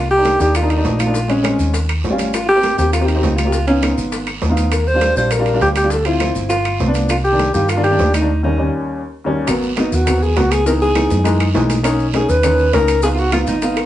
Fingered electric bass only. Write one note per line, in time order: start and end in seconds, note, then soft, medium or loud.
0.00 0.34 C2 medium
0.40 0.81 D#2 loud
0.85 1.54 A#1 medium
1.59 2.01 D#2 medium
2.04 2.73 G#1 medium
2.78 3.20 D#2 loud
3.23 3.92 C#2 medium
3.97 4.39 G#1 medium
4.42 5.11 D#2 medium
5.16 5.58 A#1 medium
5.61 6.30 D2 medium
6.35 6.77 G1 loud
6.80 7.49 C2 medium
7.54 7.96 G2 medium
7.99 8.68 D#2 medium
9.48 9.89 G#1 medium
9.92 10.33 D#2 loud
10.37 11.05 C#2 medium
11.10 11.52 F#2 loud
11.56 12.24 B1 medium
12.29 12.70 D#2 loud
12.73 13.42 C#2 medium
13.47 13.86 G#1 loud